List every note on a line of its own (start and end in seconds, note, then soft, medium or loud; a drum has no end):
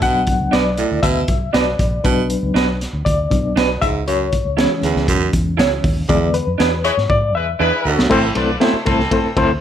0.01 0.32 B1 loud
0.01 0.22 B2 medium
0.01 0.74 F#3 medium
0.01 0.74 B3 medium
0.01 0.75 D4 medium
0.01 0.55 F#5 loud
0.01 kick loud
0.01 closed hi-hat medium
0.27 kick medium
0.27 closed hi-hat medium
0.40 0.50 C#2 medium
0.51 0.83 B1 loud
0.51 0.63 D4 medium
0.51 0.63 F#4 medium
0.51 0.64 B4 medium
0.51 1.05 D5 loud
0.51 snare loud
0.51 closed hi-hat medium
0.78 0.98 A2 medium
0.78 closed hi-hat medium
0.92 1.01 D2 medium
1.03 1.23 D2 medium
1.03 1.23 B2 medium
1.03 1.50 E5 medium
1.03 kick medium
1.03 closed hi-hat medium
1.28 1.49 B1 medium
1.28 kick medium
1.28 closed hi-hat medium
1.53 1.74 B1 medium
1.53 1.64 D4 medium
1.53 1.65 F#4 loud
1.53 1.65 B4 medium
1.53 2.06 D5 medium
1.53 snare loud
1.53 closed hi-hat medium
1.79 1.99 A#1 loud
1.79 kick loud
1.79 closed hi-hat medium
2.04 2.35 B1 medium
2.04 2.25 B2 medium
2.04 2.76 F#3 medium
2.04 2.77 B3 medium
2.04 2.77 D4 medium
2.04 2.76 B4 medium
2.04 kick loud
2.04 closed hi-hat medium
2.30 closed hi-hat medium
2.43 2.53 C#2 medium
2.54 2.85 B1 loud
2.54 2.65 D4 medium
2.54 2.66 F#4 medium
2.54 2.66 B4 medium
2.54 snare loud
2.54 closed hi-hat medium
2.81 snare soft
2.81 closed hi-hat medium
2.93 3.03 D2 medium
3.05 3.26 D2 loud
3.05 3.84 D5 medium
3.05 kick medium
3.05 closed hi-hat medium
3.30 3.51 B1 medium
3.30 3.53 F#3 soft
3.30 3.54 B3 soft
3.30 3.54 D4 medium
3.30 kick medium
3.30 closed hi-hat medium
3.56 3.76 B1 loud
3.56 3.67 D4 medium
3.56 3.67 F#4 medium
3.56 3.68 B4 loud
3.56 snare loud
3.56 closed hi-hat medium
3.82 4.32 C#2 loud
3.82 4.02 G#2 medium
3.82 3.93 E5 loud
3.82 kick loud
3.82 closed hi-hat medium
4.07 4.27 F#2 medium
4.07 5.30 C#5 medium
4.07 closed hi-hat medium
4.33 kick medium
4.33 closed hi-hat medium
4.45 4.65 C#2 medium
4.57 6.05 E3 medium
4.57 6.05 G#3 medium
4.57 6.05 C#4 medium
4.57 4.68 E4 medium
4.57 4.68 G#4 medium
4.57 4.69 C#5 medium
4.57 snare loud
4.57 closed hi-hat medium
4.83 4.93 D2 medium
4.83 5.03 E2 medium
4.83 snare soft
4.83 closed hi-hat medium
4.95 5.05 C#2 medium
4.95 snare soft
5.08 5.28 E2 loud
5.08 5.28 F#2 medium
5.08 kick medium
5.08 closed hi-hat loud
5.33 5.60 E2 medium
5.33 kick medium
5.33 closed hi-hat medium
5.57 5.79 C#2 medium
5.57 5.68 E4 medium
5.57 5.69 G#4 medium
5.57 5.69 C#5 loud
5.57 snare loud
5.57 closed hi-hat medium
5.84 6.04 D#2 medium
5.84 kick loud
5.84 open hi-hat medium
6.08 6.29 E2 medium
6.08 6.39 E2 loud
6.08 6.42 D3 medium
6.08 6.43 G#3 medium
6.08 6.43 B3 medium
6.08 6.35 D5 medium
6.08 kick loud
6.08 closed hi-hat medium
6.34 6.86 B4 medium
6.34 closed hi-hat medium
6.47 6.57 F2 medium
6.58 6.89 E2 loud
6.58 6.69 D4 medium
6.58 6.70 G#4 medium
6.58 6.70 B4 medium
6.58 snare loud
6.58 closed hi-hat medium
6.84 6.92 G#3 loud
6.84 6.93 E4 loud
6.84 6.92 B4 loud
6.84 7.11 C#5 medium
6.84 closed hi-hat medium
6.98 7.07 G#2 medium
6.98 snare soft
7.10 7.35 G#2 medium
7.10 7.33 D5 loud
7.10 kick medium
7.35 7.55 E2 loud
7.35 7.46 G#3 medium
7.35 7.46 E4 medium
7.35 7.46 B4 loud
7.35 8.07 E5 medium
7.59 7.70 E2 medium
7.59 8.08 G#3 medium
7.59 7.70 D4 medium
7.59 8.08 E4 loud
7.59 7.71 G#4 medium
7.59 8.08 B4 loud
7.59 7.71 B4 medium
7.85 8.05 D2 medium
7.85 7.95 D2 loud
7.98 8.08 B1 medium
7.98 snare loud
8.10 8.31 A1 loud
8.10 8.31 A2 medium
8.10 8.31 E3 medium
8.10 8.25 A3 loud
8.10 8.31 C4 loud
8.10 8.25 C4 loud
8.10 8.25 E4 loud
8.10 8.31 A4 loud
8.10 8.25 A4 loud
8.10 8.26 C5 loud
8.10 kick loud
8.10 crash medium
8.35 8.56 B1 medium
8.35 8.50 A3 medium
8.35 8.50 C4 medium
8.35 8.56 D4 medium
8.35 8.50 E4 medium
8.35 8.51 A4 medium
8.35 8.56 B4 medium
8.35 8.51 C5 medium
8.35 8.56 D5 loud
8.35 ride medium
8.60 8.75 A3 medium
8.60 8.81 A3 medium
8.60 8.71 C4 medium
8.60 8.75 C4 medium
8.60 8.81 E4 medium
8.60 8.75 E4 medium
8.60 8.72 E4 medium
8.60 8.76 A4 medium
8.60 8.72 A4 medium
8.60 8.81 C5 medium
8.60 8.76 C5 medium
8.60 snare loud
8.60 ride medium
8.73 muted fingered electric bass stroke soft
8.86 9.06 C2 medium
8.86 9.34 E3 medium
8.86 9.00 A3 medium
8.86 9.00 C4 medium
8.86 9.34 C4 loud
8.86 9.01 E4 medium
8.86 9.33 A4 loud
8.86 9.01 A4 medium
8.86 9.01 C5 medium
8.86 kick loud
8.86 snare soft
8.86 ride medium
9.00 snare soft
9.11 9.26 A3 medium
9.11 9.26 C4 medium
9.11 9.26 E4 medium
9.11 9.26 A4 medium
9.11 9.27 C5 loud
9.11 kick medium
9.11 ride medium
9.24 muted fingered electric bass stroke soft
9.36 9.56 D2 medium
9.36 9.51 A3 loud
9.36 9.51 C4 loud
9.36 9.51 E4 loud
9.36 9.51 A4 loud
9.36 9.52 C5 loud
9.36 kick loud
9.36 ride medium